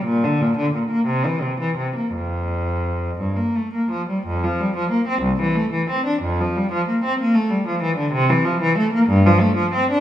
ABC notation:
X:1
M:6/8
L:1/16
Q:3/8=61
K:F
V:1 name="Cello" clef=bass
B,, D, B,, D, B,, B, C, E, C, E, C, B, | F,,6 G,, B, A, B, F, G, | F,, F, G, F, B, C C,, E, A, E, C D | F,, F, G, F, B, C B, A, G, F, E, D, |
C, E, F, E, A, B, G,, F, A, F, C D |]